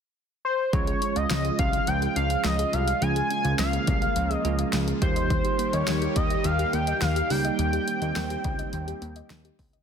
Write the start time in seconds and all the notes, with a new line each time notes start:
0.45 C5
0.73 C#2 C#3 F3 G#3 C#4 F4 G#4 C#5, kick, closed hi-hat
0.87 G#4, closed hi-hat
1.02 C#4, closed hi-hat
1.16 C#2 D#5 F5, closed hi-hat
1.30 C#2 F3, snare, closed hi-hat
1.45 G#4, closed hi-hat
1.59 C2 C#4 F5, kick, closed hi-hat
1.73 F5, closed hi-hat
1.87 C#2 F3 G5, closed hi-hat
2.02 G#4, closed hi-hat
2.16 C#2 C#4 F5, closed hi-hat
2.30 F5, closed hi-hat
2.44 C#2 F3 D#5, snare, closed hi-hat
2.59 G#4, closed hi-hat
2.73 C2 C#4 F5, closed hi-hat
2.88 F5, closed hi-hat
3.02 C#2 F3 G#3 A#3 C#4 F4 G#4 G#5, closed hi-hat
3.16 G#4, closed hi-hat
3.30 C#4 G#5, closed hi-hat
3.45 C#2 F5, closed hi-hat
3.59 C#2 F3 F5, snare, closed hi-hat
3.73 G#4, closed hi-hat
3.87 C2 C#4, kick, closed hi-hat
4.02 F5, closed hi-hat
4.16 C#2 F3, closed hi-hat
4.30 G#4, closed hi-hat
4.35 D#5
4.45 C#2 G#3 C#4 F4 G#4, closed hi-hat
4.59 F5, closed hi-hat
4.73 C#2 F3, snare, closed hi-hat
4.87 G#4, closed hi-hat
5.02 D#2 D#3 G3 A#3 D#4 G4 C5, kick, closed hi-hat
5.16 D#5, closed hi-hat
5.30 D#3, kick, closed hi-hat
5.45 G4, closed hi-hat
5.59 A#3, closed hi-hat
5.73 D#2 C#5 D#5, closed hi-hat
5.87 D#2 D#3, snare, closed hi-hat
6.02 G4, closed hi-hat
6.16 D#2 A#3 D#5, kick, closed hi-hat
6.30 D#5, closed hi-hat
6.44 D#2 D#3 F5, closed hi-hat
6.59 G4, closed hi-hat
6.73 D#2 A#3 G5, closed hi-hat
6.87 D#5, closed hi-hat
7.02 D#2 D#3 F5, snare, closed hi-hat
7.16 G4, closed hi-hat
7.30 C#2 G3 A#3 C4 D#4 G4 G5, open hi-hat
7.45 D#5, closed hi-hat
7.59 D#2 D#3, closed hi-hat
7.73 G4, closed hi-hat
7.88 A#3, closed hi-hat
8.02 D#2 D#5, closed hi-hat
8.16 D#2 D#3, snare, closed hi-hat
8.30 G4, closed hi-hat
8.44 C#2 A#3, kick, closed hi-hat
8.59 D#5, closed hi-hat
8.73 D#2 D#3, closed hi-hat
8.87 G4, closed hi-hat
9.02 D#2 A#3, closed hi-hat
9.16 D#5, closed hi-hat
9.30 D#2 D#3, snare, closed hi-hat
9.45 G4, closed hi-hat
9.59 C#2 A#3, kick, open hi-hat
9.73 D#5, closed hi-hat